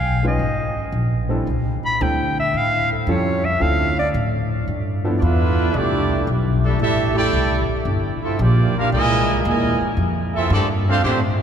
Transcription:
Already playing: B1 F5
0.23 G#3 C#4 D#4 F4 B4
0.27 D#5
0.39 G#1
0.92 A#1
1.29 G3 C4 D4 E4 A4
1.47 C2
1.84 B5, muted upright bass stroke
2.01 D2 G3 C4 D4 E4 A4 G5
2.40 E5
2.54 A2 F5
2.92 A4
3.07 F2 G3 C#4 E4 F4 A4
3.11 C#5
3.45 E5
3.60 D2 F3 C4 D4 E4 A4 F5
3.99 D5
4.14 A2
4.67 G2
5.05 F3 B3 D4 E4 A4
5.18 E2 B3 D4 E4 F4 D5
5.23 A4 B4 E5
5.74 C2 G3 A3 D4 E4 G4 D5
6.27 B1
6.65 G3 A3 D4 E4 G4 A4 E5
6.78 A1 G3 A3 D4 E4 G4 A4 E5
7.14 A3 E4 G4 A4 D5 G5
7.33 C2
7.69 muted upright bass stroke
7.85 G1
8.22 C4 E4 F4 A4 E5
8.39 A#1 F3 A#3 D4 F4 G4 D5
8.75 A#3 D4 F4 G4 A#4 F5, muted upright bass stroke
8.92 C2 A#2 E3 G#3 E4 A#4 D#5 G#5
9.45 D#2 A#2 E3 G#3 E4 A#4 D#5 G#5
9.81 muted upright bass stroke
9.97 F2
10.35 C4 E4 F4 A4 E5
10.50 G2 D3 A3 C4 D4 G4 A4 D5
10.89 C4 D4 F4 A4 C5 F5
11.04 A2 D3 A3 C4 D4 G4 C5

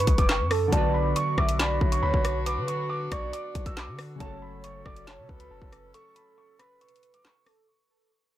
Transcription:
Already playing: C#3 F#3 A3 F#4 A4 B4 C#6
0.00 closed hi-hat
0.07 C#2, kick, closed hi-hat
0.18 F#1 D6, kick, closed hi-hat
0.29 C#6, snare, clap
0.40 F#2
0.51 A4, cross-stick, open hi-hat
0.68 D3 F#3
0.73 B1 B3 D4 F#4 D5 A5, kick, closed hi-hat
0.77 B4
0.94 B5
1.16 C#6, closed hi-hat
1.38 B1 E5 D6, kick, cross-stick
1.49 closed hi-hat
1.59 D5 B5, snare, clap, closed hi-hat
1.81 B1 C#5, kick
1.92 C#6, closed hi-hat
2.03 D2 B5
2.14 B1, kick
2.25 cross-stick, closed hi-hat
2.46 B4 D6, closed hi-hat
2.57 D3
2.68 C#6, closed hi-hat
2.89 D6
3.11 B1 D5 C#6, kick, cross-stick, closed hi-hat
3.33 D6, closed hi-hat
3.55 B1, kick, closed hi-hat
3.66 B1 E6, kick, closed hi-hat
3.77 D6, snare, clap
3.88 D3
3.99 cross-stick, open hi-hat
4.16 C#3 F#3
4.20 F#1 F#3 A3 C#4 F#4 A4 C#5 A5, kick, closed hi-hat
4.25 A4
4.42 B5
4.64 C#6, closed hi-hat
4.86 F#1 D5 D6, kick, cross-stick
4.96 closed hi-hat
5.07 C#5 A5, snare, clap, closed hi-hat
5.18 C#3
5.29 C#2 B4, kick
5.40 B5, closed hi-hat
5.51 F#1 A5
5.62 F#1, kick
5.73 cross-stick, closed hi-hat
5.94 A4 C#6, closed hi-hat
6.16 B5, closed hi-hat
6.38 C#6
6.59 B4 B5, cross-stick, closed hi-hat
6.81 C#6, closed hi-hat
6.89 closed hi-hat
6.96 closed hi-hat
7.03 closed hi-hat
7.14 D6, closed hi-hat
7.25 C#6, snare, clap
7.46 A4, cross-stick, open hi-hat

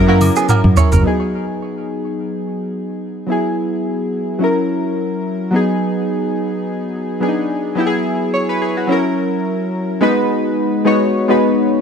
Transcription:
Already playing: F#2
0.07 F#3 A#3 C#4 E4 F#4 A#4
0.21 open hi-hat, mid tom, high agogo, shaker
0.36 B3 G#4, shaker
0.49 C#4 A#4, mid tom, high agogo, low woodblock, shaker
0.64 F#2, mid tom
0.77 E4 C#5, floor tom, shaker
0.92 F#1 C#4 A#4, floor tom, shaker
1.02 F#3 B3 D#4
1.07 G#4
3.27 F#3 B3 E4
3.32 G#4
4.39 F#3 C#4 E4
4.44 A#4
5.51 F#3 B3 D#4
5.56 G#4
7.20 F#3 B3 D4 G#4
7.28 D#4
7.75 F#3 B3 E4
7.80 G4
7.87 G#4
8.34 C#5
8.49 B4
8.62 G#4
8.77 F#4
8.87 F#3 C#4 E4
8.92 A#4
10.01 G#3 B3 D#4 F#4 B4
10.85 G#3 B3 D#4 F#4 C#5
11.28 G#3 B3 D#4 F#4 B4

